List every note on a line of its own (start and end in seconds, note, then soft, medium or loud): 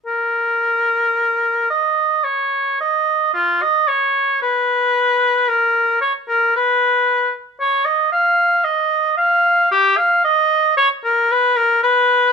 0.06 1.65 A#4 medium
1.70 2.26 D#5 medium
2.24 2.78 C#5 medium
2.80 3.33 D#5 medium
3.34 3.63 F4 medium
3.62 3.89 D#5 medium
3.88 4.41 C#5 medium
4.42 5.50 B4 medium
5.48 6.01 A#4 medium
6.01 6.13 C#5 medium
6.28 6.53 A#4 medium
6.56 7.31 B4 medium
7.60 7.87 C#5 medium
7.85 8.12 D#5 medium
8.12 8.66 F5 medium
8.64 9.16 D#5 medium
9.17 9.69 F5 medium
9.71 9.99 G4 medium
9.97 10.24 F5 medium
10.24 10.76 D#5 medium
10.77 10.89 C#5 medium
11.04 11.33 A#4 medium
11.32 11.58 B4 medium
11.56 11.82 A#4 medium
11.83 12.33 B4 medium